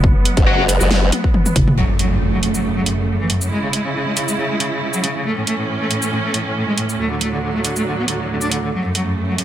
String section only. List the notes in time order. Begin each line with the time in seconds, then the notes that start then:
Already playing: F#3 G#3 B3
1.77 F#2 C#3 A3
3.51 C#3 G#3 E4
5.25 A2 E3 C#4
6.99 D2 A2 F#3
8.73 F#2 C#3 A3